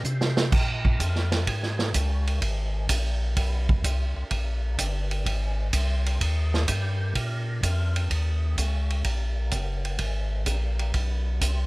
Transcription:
0.04 tonewheel organ C3, hi-hat pedal
0.21 snare
0.37 snare
0.52 tonewheel organ A#2, kick, crash
0.85 kick
1.00 tonewheel organ F2, kick, hi-hat pedal, ride
1.15 snare
1.31 snare, ride
1.47 tonewheel organ G#2, kick, ride
1.63 snare
1.79 snare
1.94 tonewheel organ C#2, kick, hi-hat pedal, ride
2.27 ride
2.41 tonewheel organ G#1, kick, ride
2.89 tonewheel organ A#1, kick, hi-hat pedal, ride
3.37 tonewheel organ B1, kick, ride
3.69 kick
3.84 tonewheel organ C2, kick, hi-hat pedal, ride
4.17 tonewheel organ C2
4.31 tonewheel organ A#1, kick, ride
4.78 tonewheel organ G1, kick, hi-hat pedal, ride
5.11 ride
5.25 tonewheel organ G#1, kick, ride
5.73 tonewheel organ C2, kick, hi-hat pedal, ride
6.06 ride
6.21 tonewheel organ D#2, kick, ride
6.54 snare
6.68 tonewheel organ G2, kick, hi-hat pedal, ride
7.15 tonewheel organ A#2, kick, ride
7.63 tonewheel organ F2, kick, hi-hat pedal, ride
7.96 ride
8.10 tonewheel organ D#2, kick, ride
8.58 tonewheel organ C#2, kick, hi-hat pedal, ride
8.90 ride
9.04 tonewheel organ A#1, kick, ride
9.51 tonewheel organ F#1, kick, hi-hat pedal, ride
9.85 ride
9.99 tonewheel organ G#1, kick, ride
10.46 tonewheel organ A#1, kick, hi-hat pedal, ride
10.79 ride
10.94 tonewheel organ B1, kick, ride
11.41 tonewheel organ C2, kick, hi-hat pedal, ride

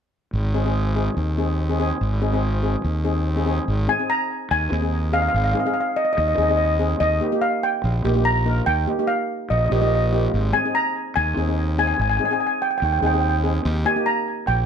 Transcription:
0.33 fingered electric bass G#1
0.54 steel pan C4 D#4 G#4
0.65 steel pan C4 D#4 G#4
0.96 steel pan C4 D#4 G#4
1.17 fingered electric bass D#2
1.38 steel pan C4 D#4 G#4
1.69 steel pan C4 D#4 G#4
1.79 steel pan C4 D#4 G#4
2.01 fingered electric bass G#1
2.21 steel pan C4 D#4 G#4
2.33 steel pan C4 D#4 G#4
2.63 steel pan C4 D#4 G#4
2.84 fingered electric bass D#2
3.04 steel pan C4 D#4 G#4
3.36 steel pan C4 D#4 G#4
3.46 steel pan C4 D#4 G#4
3.68 fingered electric bass G#1
3.88 steel pan C4 D#4 G#4 G#5
3.99 steel pan C4 D#4 G#4
4.10 steel pan A#5
4.51 fingered electric bass D#2, steel pan G#5
4.71 fingered electric bass D#2, steel pan C4 D#4 G#4
4.82 steel pan C4 D#4 G#4
5.12 steel pan C4 D#4 G#4 F5
5.22 steel pan F5
5.28 steel pan F5
5.34 fingered electric bass G#1, steel pan F5
5.44 steel pan F5
5.52 steel pan C4 D#4 G#4 F5
5.60 steel pan F5
5.66 steel pan C4 D#4 G#4 F5
5.74 steel pan F5
5.80 steel pan F5
5.96 steel pan D#5
6.05 steel pan D#5
6.13 steel pan D#5
6.18 fingered electric bass D#2, steel pan D#5
6.28 steel pan D#5
6.36 fingered electric bass D#2, steel pan C4 D#4 G#4 D#5
6.42 steel pan D#5
6.49 steel pan C4 D#4 G#4 D#5
6.57 steel pan D#5
6.65 steel pan D#5
6.79 steel pan C4 D#4 G#4
7.00 fingered electric bass D#2, steel pan D#5
7.21 steel pan A#3 D#4 G4
7.32 steel pan A#3 D#4 G4
7.42 steel pan F5
7.63 steel pan G5
7.84 fingered electric bass A#1
8.04 fingered electric bass A#1, steel pan A#3 D#4 G4
8.15 steel pan A#3 D#4 G4
8.25 steel pan A#5
8.45 steel pan A#3 D#4 A#4
8.66 fingered electric bass D#2, steel pan G5
8.87 steel pan A#3 D#4 G4
8.99 steel pan A#3 D#4 G4
9.07 steel pan F5
9.50 fingered electric bass A#1, steel pan D#5
9.59 steel pan D#5
9.66 steel pan D#5
9.71 fingered electric bass A#1, steel pan A#3 D#4 G4 D#5
9.81 steel pan A#3 D#4 G4 D#5
9.87 steel pan D#5
9.95 steel pan D#5
10.12 steel pan A#3 D#4 G4
10.34 fingered electric bass G#1
10.53 steel pan C4 D#4 G#4 G#5
10.65 steel pan C4 D#4 G#4
10.75 steel pan A#5
11.16 fingered electric bass D#2, steel pan G#5
11.37 fingered electric bass D#2, steel pan C4 D#4 G#4
11.48 steel pan C4 D#4 G#4
11.78 steel pan C4 D#4 G#4 G#5
11.87 steel pan G#5
11.94 steel pan G#5
11.99 fingered electric bass G#1, steel pan G#5
12.10 steel pan G#5
12.17 steel pan C4 D#4 G#4 G#5
12.25 steel pan G#5
12.31 steel pan C4 D#4 G#4 G#5
12.40 steel pan G#5
12.47 steel pan G#5
12.62 steel pan G5
12.71 steel pan G5
12.78 steel pan G5
12.82 fingered electric bass D#2, steel pan G5
12.93 steel pan G5
12.99 fingered electric bass D#2, steel pan C4 D#4 G#4 G5
13.07 steel pan G5
13.13 steel pan C4 D#4 G#4 G5
13.21 steel pan G5
13.29 steel pan G5
13.44 steel pan C4 D#4 G#4
13.65 fingered electric bass D#2
13.85 steel pan A#3 D#4 G4 G#5
13.96 steel pan A#3 D#4 G4
14.06 steel pan A#5
14.47 fingered electric bass A#1, steel pan G5

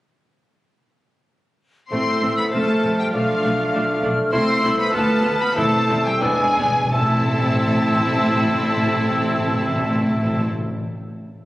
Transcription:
1.91 double bass section A1, bassoon A3, viola section A3 C4, french horn section A3 E4, cello section C4, clarinet C5, violin section C5 C6, flute section E6
2.22 double bass section A1, viola section A3 C4
2.37 cello section B3, violin section B4 B5
2.51 double bass section F1, bassoon A3, viola section A3 C4, cello section A3, french horn section F4, violin section A4 A5, clarinet C5, flute section F6
2.83 double bass section F1, viola section A3 C4
2.98 cello section G3, violin section G4 G5
3.12 double bass section B1, cello section F3, bassoon A3, viola section A3 D4, french horn section D4, violin section F4 F5, clarinet D5, flute section F6
3.44 double bass section B1, viola section A3 D4
3.73 double bass section B1, viola section A3 D4
4.03 double bass section B1, viola section A3 D4
4.32 double bass section C2, viola section A3 E4, bassoon A3, french horn section A3 E4, cello section C4, clarinet C5, violin section C5 C6, flute section E6
4.63 double bass section C2, viola section A3 E4
4.78 cello section B3, violin section B4 B5
4.93 double bass section D2, cello section A3, viola section B3 F4, bassoon B3, french horn section B3 F4, violin section A4 A5, clarinet B4, flute section F6
5.23 double bass section D2, viola section B3 F4
5.40 cello section B3, violin section B4 B5
5.54 double bass section E2, timpani E2, bassoon A3, cello section A3, viola section C4 E4, french horn section C4 E4, violin section A4 A5, clarinet C5, flute section E6
5.88 double bass section E2, viola section C4 E4
6.05 cello section G3, violin section G4 G5
6.21 double bass section E2, timpani E2, cello section G#3, bassoon B3, viola section B3 D4, french horn section B3 D4, violin section G#4 G#5, clarinet D5, flute section E6
6.30 timpani E2
6.39 timpani E2
6.47 timpani E2
6.57 timpani E2, double bass section E2, viola section B3 D4
6.66 timpani E2
6.75 timpani E2
6.83 timpani E2
6.92 double bass section A1, timpani A2, cello section A3, french horn section C4 E4, bassoon C4, viola section C4 E4, violin section A4 A5, clarinet E5, flute section E6
7.00 timpani A2
7.07 timpani A2
7.14 timpani A2
7.21 timpani A2
7.28 timpani A2
7.36 timpani A2
7.42 timpani A2
7.50 timpani A2
7.57 timpani A2
7.65 timpani A2
7.71 timpani A2
7.79 timpani A2
7.86 timpani A2
7.93 timpani A2
8.01 timpani A2
8.08 timpani A2
8.15 timpani A2
8.22 timpani A2
8.29 timpani A2
8.35 timpani A2
8.42 timpani A2
8.49 timpani A2
8.56 timpani A2
8.63 timpani A2
8.70 timpani A2
8.77 timpani A2
8.83 timpani A2
8.91 timpani A2
8.98 timpani A2
9.05 timpani A2
9.12 timpani A2
9.19 timpani A2
9.26 timpani A2
9.33 timpani A2
9.40 timpani A2
9.47 timpani A2
9.55 timpani A2
9.62 timpani A2
9.68 timpani A2
9.75 timpani A2
9.82 timpani A2
9.89 timpani A2
9.96 timpani A2
10.03 timpani A2
10.10 timpani A2
10.17 timpani A2
10.24 timpani A2
10.31 timpani A2
10.38 timpani A2
10.45 timpani A2
10.52 timpani A2
10.58 timpani A2
10.65 timpani A2

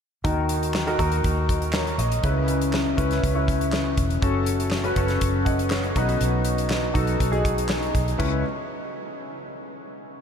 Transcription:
0.24 fingered electric bass D#2, grand piano D#3 D#4 F#4 A#4, kick, closed hi-hat
0.49 closed hi-hat
0.63 closed hi-hat
0.74 snare, clap
0.86 grand piano D#4 F#4 A#4, closed hi-hat
0.98 fingered electric bass D#2, grand piano D#4 F#4 A#4, kick, closed hi-hat
1.12 closed hi-hat
1.24 fingered electric bass D#2, kick, closed hi-hat
1.49 kick, closed hi-hat
1.62 closed hi-hat
1.73 grand piano A#4 C#5, snare, clap
1.87 closed hi-hat
1.98 fingered electric bass A#1, grand piano D#5, closed hi-hat
2.12 closed hi-hat
2.24 fingered electric bass C#2, grand piano C#3 C#4 E4 B4, kick, closed hi-hat
2.48 closed hi-hat
2.62 closed hi-hat
2.73 snare, clap
2.97 fingered electric bass C#2, grand piano C#4 E4 B4, kick, closed hi-hat
3.11 snare, closed hi-hat
3.24 fingered electric bass C#2, kick, closed hi-hat
3.35 grand piano C#4 E4 B4
3.48 kick, closed hi-hat
3.61 closed hi-hat
3.72 snare, clap
3.97 fingered electric bass E1, kick, closed hi-hat
4.10 closed hi-hat
4.22 fingered electric bass F#1, grand piano C#4 F#4 A4, kick, closed hi-hat
4.46 closed hi-hat
4.60 closed hi-hat
4.71 snare, clap
4.84 grand piano C#4 F#4 B4, closed hi-hat
4.96 fingered electric bass F#1, grand piano C#4 F#4 A4, kick, closed hi-hat
5.08 snare, closed hi-hat
5.21 fingered electric bass F#1, kick, closed hi-hat
5.45 grand piano D#5 F#5, kick, closed hi-hat
5.59 closed hi-hat
5.70 grand piano A4 C#5, snare, clap
5.84 closed hi-hat
5.96 fingered electric bass B1, grand piano B2 D#4 F#4 B4, kick, closed hi-hat
6.09 closed hi-hat
6.21 fingered electric bass B1, closed hi-hat
6.45 closed hi-hat
6.58 closed hi-hat
6.70 snare, clap
6.94 fingered electric bass B1, grand piano D#4 F#4 A4, kick, closed hi-hat
7.07 closed hi-hat
7.20 fingered electric bass B1, kick, closed hi-hat
7.32 grand piano D#4 F#4 G#4, closed hi-hat
7.45 kick, closed hi-hat
7.58 closed hi-hat
7.69 snare, clap
7.83 closed hi-hat
7.95 fingered electric bass B1, kick, closed hi-hat
8.08 closed hi-hat
8.18 grand piano C#2 C#4 E4 B4, fingered electric bass C#2, kick, crash

